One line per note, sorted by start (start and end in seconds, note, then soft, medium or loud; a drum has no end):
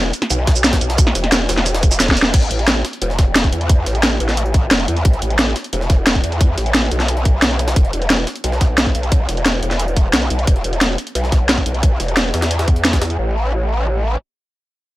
0.00 0.12 E1 loud
0.13 closed hi-hat medium
0.13 shaker soft
0.22 snare soft
0.22 closed hi-hat soft
0.30 0.80 B1 loud
0.30 closed hi-hat medium
0.30 shaker soft
0.47 kick loud
0.47 snare loud
0.47 closed hi-hat medium
0.56 shaker medium
0.64 snare loud
0.64 snare soft
0.64 closed hi-hat medium
0.64 shaker soft
0.73 kick medium
0.73 snare loud
0.73 closed hi-hat soft
0.73 closed hi-hat medium
0.81 1.14 B1 loud
0.81 closed hi-hat medium
0.81 shaker soft
0.90 snare medium
0.90 closed hi-hat soft
0.90 closed hi-hat medium
0.98 kick loud
0.98 closed hi-hat loud
0.98 closed hi-hat medium
0.98 shaker medium
1.07 snare soft
1.15 1.48 E1 loud
1.15 snare soft
1.15 closed hi-hat medium
1.15 shaker soft
1.24 snare soft
1.24 closed hi-hat soft
1.32 snare loud
1.32 closed hi-hat loud
1.32 closed hi-hat medium
1.32 shaker medium
1.49 1.99 E1 loud
1.49 snare loud
1.49 closed hi-hat medium
1.49 open hi-hat medium
1.49 shaker soft
1.57 snare soft
1.57 closed hi-hat soft
1.66 snare medium
1.66 closed hi-hat medium
1.66 shaker soft
1.74 snare loud
1.74 closed hi-hat medium
1.83 kick loud
1.83 closed hi-hat medium
1.83 shaker soft
1.91 snare medium
1.91 closed hi-hat medium
1.91 shaker medium
2.00 2.32 E1 loud
2.00 snare loud
2.00 snare medium
2.00 closed hi-hat medium
2.00 closed hi-hat loud
2.00 shaker soft
2.08 kick medium
2.08 snare medium
2.08 closed hi-hat soft
2.17 closed hi-hat medium
2.17 shaker soft
2.22 snare loud
2.22 closed hi-hat soft
2.34 2.49 A1 loud
2.34 kick loud
2.34 closed hi-hat medium
2.34 crash medium
2.42 closed hi-hat soft
2.51 2.83 A1 medium
2.51 closed hi-hat medium
2.59 closed hi-hat soft
2.68 snare loud
2.68 closed hi-hat medium
2.85 snare medium
2.85 closed hi-hat medium
2.93 closed hi-hat soft
3.02 3.51 E1 loud
3.02 closed hi-hat medium
3.10 snare soft
3.19 kick loud
3.19 snare medium
3.19 closed hi-hat medium
3.36 snare loud
3.36 closed hi-hat medium
3.44 kick medium
3.44 closed hi-hat soft
3.52 3.85 E2 loud
3.52 closed hi-hat medium
3.61 closed hi-hat soft
3.69 kick loud
3.69 closed hi-hat medium
3.86 4.19 A1 loud
3.86 snare medium
3.86 closed hi-hat medium
3.95 closed hi-hat soft
4.03 snare loud
4.03 closed hi-hat medium
4.20 4.70 A1 loud
4.20 closed hi-hat medium
4.29 snare soft
4.29 closed hi-hat soft
4.37 closed hi-hat medium
4.46 closed hi-hat soft
4.54 kick loud
4.54 closed hi-hat medium
4.71 4.87 E1 loud
4.71 snare loud
4.71 closed hi-hat medium
4.80 closed hi-hat soft
4.88 5.04 E2 loud
4.88 closed hi-hat medium
4.97 closed hi-hat soft
5.05 5.21 A1 medium
5.05 kick loud
5.05 closed hi-hat medium
5.13 closed hi-hat soft
5.22 5.54 A1 loud
5.22 closed hi-hat medium
5.30 closed hi-hat soft
5.39 snare loud
5.39 closed hi-hat medium
5.56 snare medium
5.56 closed hi-hat medium
5.64 closed hi-hat soft
5.73 6.22 E1 medium
5.73 closed hi-hat medium
5.81 snare soft
5.90 kick loud
5.90 snare medium
5.90 closed hi-hat medium
6.07 snare loud
6.07 closed hi-hat medium
6.15 kick medium
6.15 closed hi-hat soft
6.24 6.56 E2 loud
6.24 closed hi-hat medium
6.32 closed hi-hat soft
6.41 kick loud
6.41 closed hi-hat medium
6.58 6.90 A1 loud
6.58 snare soft
6.58 closed hi-hat medium
6.66 closed hi-hat soft
6.75 snare loud
6.75 closed hi-hat medium
6.91 7.75 B1 loud
6.91 closed hi-hat medium
7.00 snare soft
7.00 closed hi-hat soft
7.08 closed hi-hat medium
7.17 closed hi-hat soft
7.25 kick loud
7.25 closed hi-hat medium
7.42 snare loud
7.42 closed hi-hat medium
7.51 closed hi-hat soft
7.59 closed hi-hat medium
7.68 snare loud
7.68 closed hi-hat medium
7.68 closed hi-hat soft
7.76 7.92 E1 loud
7.76 kick loud
7.76 closed hi-hat medium
7.85 closed hi-hat soft
7.93 8.26 E1 medium
7.93 closed hi-hat medium
8.02 closed hi-hat soft
8.10 snare loud
8.10 closed hi-hat medium
8.27 snare medium
8.27 closed hi-hat medium
8.35 closed hi-hat soft
8.44 8.94 B1 medium
8.44 closed hi-hat medium
8.52 snare soft
8.61 kick loud
8.61 snare medium
8.61 closed hi-hat medium
8.78 snare loud
8.78 closed hi-hat medium
8.86 kick medium
8.86 closed hi-hat soft
8.95 9.27 B1 loud
8.95 closed hi-hat medium
9.03 closed hi-hat soft
9.12 kick loud
9.12 closed hi-hat medium
9.29 9.61 E1 medium
9.29 snare soft
9.29 closed hi-hat medium
9.37 closed hi-hat soft
9.46 snare loud
9.46 closed hi-hat medium
9.63 10.12 E1 loud
9.63 closed hi-hat medium
9.71 snare soft
9.71 closed hi-hat soft
9.79 closed hi-hat medium
9.88 closed hi-hat soft
9.96 kick loud
9.96 closed hi-hat medium
10.13 10.29 B1 medium
10.13 snare loud
10.13 closed hi-hat medium
10.22 closed hi-hat soft
10.30 10.46 B1 loud
10.30 closed hi-hat medium
10.39 closed hi-hat soft
10.47 10.63 E1 medium
10.47 kick loud
10.47 closed hi-hat medium
10.56 closed hi-hat soft
10.64 10.97 E1 loud
10.64 closed hi-hat medium
10.73 closed hi-hat soft
10.81 snare loud
10.81 closed hi-hat medium
10.98 closed hi-hat medium
11.07 closed hi-hat soft
11.15 11.65 B1 loud
11.15 closed hi-hat medium
11.24 snare soft
11.32 kick medium
11.32 snare medium
11.32 closed hi-hat medium
11.49 snare loud
11.49 closed hi-hat medium
11.58 kick medium
11.58 closed hi-hat soft
11.66 11.99 B1 medium
11.66 closed hi-hat medium
11.74 closed hi-hat soft
11.83 kick loud
11.83 closed hi-hat medium
12.00 12.32 E1 loud
12.00 snare medium
12.00 closed hi-hat medium
12.08 closed hi-hat soft
12.17 snare loud
12.17 closed hi-hat medium
12.34 13.17 E2 loud
12.34 snare loud
12.34 closed hi-hat medium
12.42 snare loud
12.42 snare soft
12.42 closed hi-hat medium
12.42 closed hi-hat soft
12.51 closed hi-hat medium
12.59 snare loud
12.59 closed hi-hat medium
12.68 kick loud
12.68 closed hi-hat medium
12.76 closed hi-hat medium
12.85 snare loud
12.85 closed hi-hat medium
12.93 kick medium
12.93 snare loud
12.93 closed hi-hat medium
12.93 closed hi-hat soft
13.02 snare loud
13.02 closed hi-hat medium
13.10 closed hi-hat soft
13.19 14.16 A1 medium